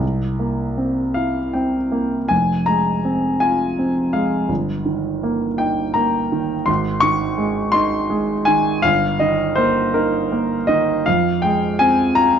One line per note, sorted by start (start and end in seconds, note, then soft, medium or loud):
0.00 2.23 C2 soft
0.39 1.01 A#3 soft
0.77 1.39 C4 soft
1.14 1.77 E4 soft
1.14 1.53 F5 medium
1.53 2.16 C4 soft
1.53 2.30 G5 soft
1.92 2.30 A#3 soft
2.29 4.45 F1 soft
2.29 2.67 G#5 medium
2.66 3.27 G#3 soft
2.66 3.41 A#5 medium
3.05 3.64 C4 soft
3.40 4.00 F4 soft
3.40 4.13 G#5 medium
3.79 4.35 C4 soft
4.13 4.49 G#3 soft
4.13 4.49 F5 medium
4.48 6.64 G1 soft
4.85 5.47 D#3 soft
5.23 5.83 A#3 soft
5.58 6.18 D#4 soft
5.58 5.96 G5 medium
5.94 6.53 A#3 soft
5.94 6.66 A#5 medium
6.32 6.68 D#3 soft
6.66 8.80 G#1 medium
6.66 7.02 C6 medium
7.00 7.58 D#3 soft
7.00 7.72 C#6 medium
7.38 7.95 G#3 medium
7.72 8.33 D#4 medium
7.72 8.47 C6 medium
8.09 8.70 G#3 soft
8.45 8.85 D#3 medium
8.45 8.83 G#5 medium
8.82 11.02 G1 medium
8.82 9.20 F5 medium
9.20 9.80 D#3 medium
9.20 9.57 D#5 medium
9.56 10.17 A#3 soft
9.56 9.93 C5 medium
9.94 10.54 D#4 soft
9.94 10.69 A#4 medium
10.32 10.92 A#3 soft
10.67 11.06 D#3 soft
10.67 11.06 D#5 medium
11.06 12.39 F2 medium
11.06 11.43 F5 medium
11.42 12.02 G#3 soft
11.42 11.79 G5 medium
11.79 12.39 C4 soft
11.79 12.16 G#5 medium
12.15 12.39 F4 soft
12.15 12.39 A#5 medium